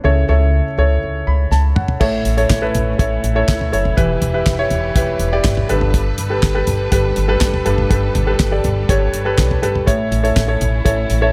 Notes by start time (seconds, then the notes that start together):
0.04 C#2 C#3 E4 A4 C#5
0.28 C#2 E4 A4 C#5
0.78 C#2 E4 A4 C#5
1.03 C#2
1.27 C#2 B5
1.51 C#2 A5, snare
1.76 F#5, mid tom
1.88 floor tom
2.00 A1 A2 A3 C#4 E4 A4 C#5, kick, crash
2.25 A1, closed hi-hat
2.37 E4 A4 C#5, closed hi-hat
2.50 A1, kick, snare, clap, closed hi-hat
2.61 E4 A4 B4
2.74 A1, closed hi-hat, floor tom
2.98 A1 E4 A4 C#5, kick, closed hi-hat
3.23 A1, closed hi-hat
3.35 E4 A4 C#5
3.48 C#2, kick, snare, clap, closed hi-hat
3.61 floor tom
3.72 F#1 E4 A4 C#5, closed hi-hat
3.85 floor tom
3.96 E1 E3 E4 G4 B4, kick, closed hi-hat
4.22 E1, closed hi-hat, floor tom
4.33 E4 G4 B4
4.46 E1, kick, snare, clap, closed hi-hat
4.58 E4 G4 C#5
4.70 E1, closed hi-hat, floor tom
4.95 E1 E4 G4 B4, kick, closed hi-hat
5.19 E1, closed hi-hat
5.32 E4 G4 D5
5.44 G1, kick, snare, clap, closed hi-hat
5.57 floor tom
5.69 G1 G2 G3 D4 G4 A4 B4, closed hi-hat
5.81 floor tom
5.94 kick, closed hi-hat
6.18 G1, closed hi-hat
6.30 G4 A4 B4
6.43 G1, kick, snare, clap, closed hi-hat
6.55 G4 A4 B4
6.67 G1, closed hi-hat, floor tom
6.91 G1 G4 A4 B4, kick, closed hi-hat
7.16 G1, closed hi-hat
7.28 G4 A4 B4
7.41 G1, kick, snare, clap, closed hi-hat
7.54 floor tom
7.65 F#1 G2 G4 A4 B4, closed hi-hat
7.78 floor tom
7.90 G1 G4 A4 B4, kick, closed hi-hat
8.15 G1, closed hi-hat, floor tom
8.27 G4 A4 B4
8.39 G1, kick, snare, clap, closed hi-hat
8.51 G4 A4 D5
8.64 G1, closed hi-hat, floor tom
8.89 G1 G4 A4 C#5, kick, closed hi-hat
9.13 G1, closed hi-hat
9.25 G4 A4 B4
9.38 B1, kick, snare, clap, closed hi-hat
9.51 floor tom
9.62 G1 G4 A4 B4, closed hi-hat
9.75 floor tom
9.86 A1 A2 A3 C#4 E4 A4 C#5, kick, closed hi-hat
10.11 A1, closed hi-hat
10.23 E4 A4 C#5, closed hi-hat
10.36 A1, kick, snare, clap, closed hi-hat
10.48 E4 A4 C#5
10.61 A1, closed hi-hat, floor tom
10.84 A1 E4 A4 C#5, kick, closed hi-hat
11.10 A1, closed hi-hat
11.21 E4 A4 C#5